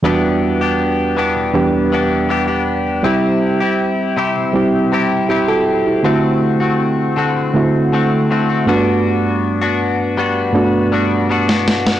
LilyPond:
<<
  \new Staff \with { instrumentName = "Reed electric piano" } { \time 4/4 \key e \minor \tempo 4 = 80 << { r1 | r2. <e' g'>16 <fis' a'>8 <e' g'>16~ | <e' g'>16 r2. r8. | r1 | } \\ { <e, g b d' fis'>4.~ <e, g b d' fis'>16 r16 <e, g b d' g'>4.~ <e, g b d' g'>16 r16 | <g c' e' g'>4.~ <g c' e' g'>16 r16 <g c' e' g'>4.~ <g c' e' g'>16 r16 | <d a c' e' fis'>4.~ <d a c' e' fis'>16 r16 <d a c' e' fis'>4. <g, a b d' fis'>8~ | <g, a b d' fis'>4~ <g, a b d' fis'>16 r8. <g, a b d' fis'>4.~ <g, a b d' fis'>16 r16 | } >> }
  \new Staff \with { instrumentName = "Clean electric guitar" } { \time 4/4 \key e \minor <e b d' g'>8. <b d' g'>8. <e b d' g'>4 <e b d' g'>8 <e b d' g'>16 <b d' g'>8. | <c c' e' g'>8. <c' e' g'>8. <c c' e' g'>4 <c c' e' g'>8 <c c' e' g'>16 <c' e' g'>8. | <d a c' fis'>8. <a c' fis'>8. <d a c' fis'>4 <d a c' fis'>8 <d a c' fis'>16 <a c' fis'>16 <g b d' fis'>8~ | <g b d' fis'>8. <b d' fis'>8. <g b d' fis'>4 <g b d' fis'>8 <g b d' fis'>16 <b d' fis'>8. | }
  \new DrumStaff \with { instrumentName = "Drums" } \drummode { \time 4/4 r4 r4 r4 r4 | r4 r4 r4 r4 | r4 r4 r4 r4 | r4 r4 r4 r16 sn16 sn16 sn16 | }
>>